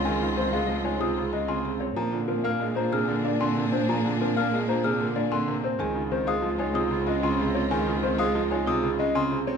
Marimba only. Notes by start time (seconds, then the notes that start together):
Already playing: C4
0.06 G#4
0.21 D#4
0.37 C4
0.53 G#4
0.69 F4
0.85 D#4
1.01 F4
1.17 G#4
1.33 C#4
1.48 C4
1.65 G#4
1.80 C4
1.96 A#4
2.12 F4
2.28 C4
2.44 A#4
2.61 G#4
2.77 F4
2.92 G#4
3.09 A#4
3.25 D4
3.41 C4
3.57 A#4
3.73 C4
3.89 A#4
4.05 F4
4.21 C4
4.37 A#4
4.53 G#4
4.69 F4
4.85 G#4
5.01 A#4
5.16 D4
5.33 C4
5.48 A#4
5.64 C4
5.80 G#4
5.96 D#4
6.12 C4
6.28 G#4
6.44 F4
6.60 D#4
6.75 F4
6.92 G#4
7.07 C#4
7.23 C4
7.40 G#4
7.55 C4
7.71 G#4
7.88 D#4
8.03 C4
8.20 G#4
8.35 F4
8.51 D#4
8.67 F4
8.83 G#4
8.99 C#4
9.15 C4
9.31 G#4
9.47 C4